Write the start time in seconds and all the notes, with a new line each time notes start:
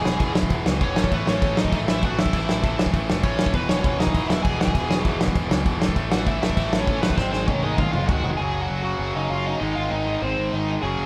Already playing: G#4 G#5
0.05 E1 E2 B2 E3, snare
0.20 E1 E2 B2 E3, kick, crash
0.35 E1 E2 B2 E3, snare
0.43 kick
0.50 E1 E2 B2 E3, kick, crash
0.65 C#2 E2 B2 E3, snare
0.81 E1 E2 B2 E3 C#4 C#5, kick, crash
0.96 A1 A2 E3 A3, snare
1.04 kick
1.12 A1 A2 E3 A3 B3 B4, kick, crash
1.27 A1 A2 E3 A3 C#4 C#5, snare
1.41 A1 A2 E3 A3, kick, crash
1.57 A1 A2 E3 A3 D#4 D#5, snare
1.65 kick
1.72 A1 A2 E3 A3 D#4 D#5, kick, crash
1.86 A1 A2 E3 A3 E5, snare
1.90 E4
2.01 A1 A2 E3 A3 F#4 F#5, kick, crash
2.17 A1 A2 E3 A3 E4 E5, snare
2.26 kick
2.33 A1 A2 E3 A3, kick, crash
2.48 A1 A2 E3 A3, snare
2.63 A1 A2 E3 A3, kick, crash
2.77 A1 A2 E3 A3, snare
2.86 kick
2.93 A1 A2 E3 A3, kick, crash
3.08 F#1 A2 E3 A3, snare
3.23 A1 A2 E3 A3 C#4 C#5, kick, crash
3.38 A1 A2 E3 A3, snare
3.46 kick
3.53 E1 E2 B2 E3 B3 B4, kick, crash
3.69 E1 E2 B2 E3 C#4 C#5, snare
3.82 E1 E2 B2 E3 C#4 C#5, kick, crash
3.99 E1 E2 B2 E3 D#4 D#5, snare
4.07 kick
4.14 E1 E2 B2 E3, kick, crash
4.27 E1 B2 E3 E4 E5, snare
4.31 E2
4.43 E1 E2 B2 E3 G#4 G#5, kick, crash
4.60 E1 E2 B2 E3 G#4 G#5, snare
4.68 kick
4.74 E1 E2 B2 E3, kick, crash
4.90 E1 E2 B2 E3, snare
5.04 E1 E2 B2 E3 F#5, kick, crash
5.20 E1 E2 B2 E3, snare
5.28 kick
5.35 E1 E2 B2 E3, kick, crash
5.51 C#2 E2 B2 E3, snare
5.66 E1 E2 B2 E3, kick, crash
5.82 A1 A2 E3 A3, snare
5.89 kick
5.96 A1 A2 E3 A3, kick, crash
6.12 A1 A2 E3 A3 F#4 F#5, snare
6.26 A1 A2 E3 A3 E4 E5, kick, crash
6.42 A1 A2 E3 A3 E4 E5, snare
6.50 kick
6.57 A1 A2 E3 A3, kick, crash
6.72 A1 A2 E3 A3, snare
6.79 C#4 C#5
6.87 A1 A2 E3 A3, kick, crash
7.02 A1 A2 E3 A3 B3 B4, snare
7.10 kick
7.17 G#1 G#2 D#3 G#3 C4 C5, kick, snare
7.31 G#1 G#2 D#3 G#3 C4 C5, snare
7.46 G#1 G#2 D#3 G#3 C#4 C#5, kick, high tom
7.63 G#1 G#2 D#3 G#3 D#4 D#5, high tom
7.77 G#1 G#2 D#3 G#3 F4 F5, kick, mid tom
7.92 F#1 G#2 D#3 G#3 F4 F5, mid tom
8.07 G#1 G#2 D#3 G#3 F#4 F#5, kick, floor tom
8.24 F1 G#2 D#3 G#3, floor tom
8.37 F#1 F#2 C#3 G#4 G#5
8.43 F#3
8.54 F#1
8.61 F#4 F#5
8.70 F#1
8.83 F#2 C#3 F#3 F#4 F#5
8.99 F#1 F#2 C#3 F#3
9.15 F#1 D#4 D#5
9.30 F#1 F4 F5
9.46 D#4 D#5
9.60 G#1 G#2 D#3 G#3
9.75 G#1 F4 F5
9.91 G#1 D#4 D#5
10.05 G#2 D#3 G#3
10.21 G#1 G#2 D#3 G#3 C4 C5
10.38 G#1
10.52 G#1 D#4 D#5
10.82 F#1 F#2 C#3 F#3 G#4 G#5
10.99 F#1